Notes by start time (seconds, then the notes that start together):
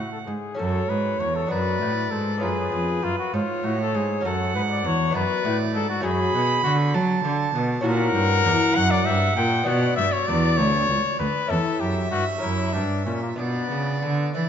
Already playing: A2 F#4 C#5 F#5
0.12 A4
0.27 G#2 G#4
0.55 C#4 F#4 A4
0.59 F#2 A4 C#5
0.89 G#2 B4
1.20 E2 C#5
1.36 A4
1.47 B3 D4 F#4
1.51 F#2 B4 D5
1.81 A2
2.11 G#2 A4
2.38 B3 C#4 F4
2.42 F#2 G#4 B4
2.72 F2
3.03 F#2 F4
3.19 F#4
3.34 G#2 F4 C#5
3.64 A2 F#4
3.81 A4
3.94 G#2 G#4
4.21 C#4 F#4
4.25 F#2 A4 F#5
4.55 G#2 B4
4.71 D5
4.84 E2 C#5
5.10 F#2 B3 F#4 D5
5.15 F#2 B4
5.45 A2
5.75 G#2 A4
5.90 F#4
6.00 F#2 A3 C#4 F#4 G#4
6.04 F#2 B5
6.35 B2
6.63 D3 F#4
6.94 F#3 A5
7.24 D3
7.55 B2
7.81 C#4 E4 F#4 A#4
7.85 A#2 F#5
8.15 G2
8.45 E2
8.76 F#2 F#5
8.91 D5
9.05 G2 E5
9.37 A#2 G5
9.63 B3 D4 F#4 D5 F#5
9.68 B2
9.96 G2 E5
10.12 C#5
10.27 E2 D5
10.57 D2 C#5
10.89 C#2
11.19 D2 B4
11.47 E2 C#4 E4 A4 E5
11.80 F#2 G4
12.11 G2 F#4
12.38 A#3 C#4 E4
12.43 F#2
12.73 G2 D4
13.05 A#2 C#4
13.22 A#3
13.36 B2 B3 D4 D5
13.71 C#3
14.02 D3
14.34 E3 E4 D5